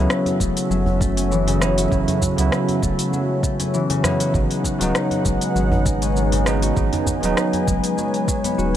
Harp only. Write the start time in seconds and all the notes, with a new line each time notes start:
Already playing: F#3 C#4 F#4
0.40 A3
0.70 F#3
1.01 A3
1.17 C#4
1.31 E3
1.47 C#3
1.61 F#3
1.77 F#4
2.38 F#3
2.82 A3
3.13 F#3
3.43 A3
3.60 C#4
3.74 E3
3.90 C#3
4.04 F#3
4.20 F#4
4.81 F#3
5.25 G#3
5.55 F#3
5.86 G#3
6.02 C#4
6.16 D#3
6.32 C#3
6.47 F#3
6.63 F#4
7.23 F#3
7.67 G#3
7.98 F#3
8.28 F#3
8.44 B3
8.58 F#4